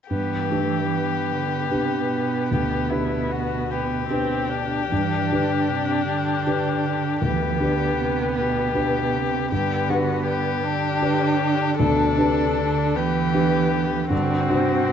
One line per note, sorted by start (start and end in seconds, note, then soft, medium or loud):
0.10 0.50 G2 soft
0.10 1.34 E3 soft
0.10 0.51 B3 soft
0.10 2.48 G4 soft
0.50 0.90 A3 soft
0.50 1.68 D4 soft
0.50 1.68 G4 soft
0.50 1.69 B4 soft
0.90 3.66 B3 soft
1.32 1.72 D3 soft
1.71 2.10 C3 soft
1.71 2.48 D4 soft
1.71 2.48 G4 soft
1.71 2.48 B4 soft
2.10 4.86 B2 soft
2.51 2.91 D2 soft
2.51 2.91 G4 soft
2.90 4.05 D4 soft
2.90 3.33 E4 soft
2.90 4.06 G4 soft
2.90 4.06 B4 soft
3.31 3.72 F#4 soft
3.70 4.07 B3 soft
3.70 7.21 G4 soft
4.08 4.50 C4 soft
4.08 4.87 D4 soft
4.08 4.87 G4 soft
4.08 4.87 B4 soft
4.48 7.24 D4 soft
4.90 5.31 G2 soft
4.90 5.32 E3 soft
5.31 5.73 D3 soft
5.31 6.43 D4 soft
5.31 6.43 G4 soft
5.31 6.43 B4 soft
5.71 6.08 C3 soft
6.09 7.24 D3 soft
6.47 7.18 D4 soft
6.47 7.18 G4 soft
6.47 7.18 B4 soft
7.22 7.58 D2 soft
7.22 7.60 E3 soft
7.22 9.50 B3 soft
7.22 8.34 G4 soft
7.59 7.97 D3 soft
7.59 8.71 D4 soft
7.59 8.72 G4 soft
7.59 8.72 B4 soft
7.97 8.38 C3 soft
8.36 8.75 B2 soft
8.36 9.49 G4 soft
8.74 9.16 B2 soft
8.74 9.47 D4 soft
8.74 9.48 G4 soft
8.74 9.47 B4 soft
9.14 9.53 C3 soft
9.51 9.88 G2 soft
9.51 10.64 D3 soft
9.51 10.65 B3 soft
9.51 9.91 G4 soft
9.89 10.98 D4 soft
9.89 10.27 F#4 soft
9.89 10.98 G4 soft
9.89 10.99 B4 soft
10.27 11.77 G4 soft
10.64 11.82 D3 soft
10.64 11.79 D4 soft
11.02 11.75 D4 soft
11.02 11.75 G4 soft
11.02 11.75 B4 soft
11.79 12.17 D2 soft
11.79 12.21 B2 soft
11.79 12.97 D4 soft
11.79 12.97 A4 soft
12.17 12.58 C3 soft
12.17 13.31 D4 soft
12.17 13.31 G4 soft
12.17 13.31 B4 soft
12.56 12.98 D3 soft
12.95 14.10 E3 soft
12.95 14.10 B3 soft
12.95 14.12 G4 soft
13.34 14.07 D4 soft
13.34 14.08 G4 soft
13.34 14.08 B4 soft
14.10 14.48 G2 soft
14.10 14.50 D3 soft
14.10 14.92 C4 soft
14.10 14.92 F#4 soft
14.49 14.88 C3 soft
14.49 14.92 D4 soft
14.49 14.92 F#4 soft
14.49 14.92 C5 soft
14.86 14.92 B2 soft